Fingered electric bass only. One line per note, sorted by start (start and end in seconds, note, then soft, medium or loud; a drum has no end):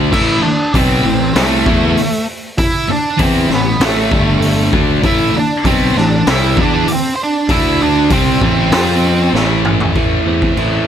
0.00 0.10 D2 medium
0.13 0.41 A1 medium
0.42 muted fingered electric bass stroke soft
0.74 1.02 B1 loud
1.05 1.33 A1 medium
1.35 1.64 C2 medium
1.66 1.95 E2 medium
2.88 muted fingered electric bass stroke soft
3.19 3.48 E2 medium
3.50 3.79 A1 medium
3.80 4.09 A1 medium
4.12 4.69 G1 loud
4.72 5.01 D2 loud
5.03 5.32 A1 medium
5.34 muted fingered electric bass stroke soft
5.64 5.93 B1 loud
5.96 6.25 A1 medium
6.27 6.55 C2 medium
6.57 6.86 E2 medium
7.49 8.07 D2 loud
8.10 8.39 C2 loud
8.41 8.70 A1 loud
8.71 9.29 F2 loud
9.33 9.91 A1 medium
9.95 10.17 A1 medium
10.26 10.48 E2 medium
10.56 10.78 A1 medium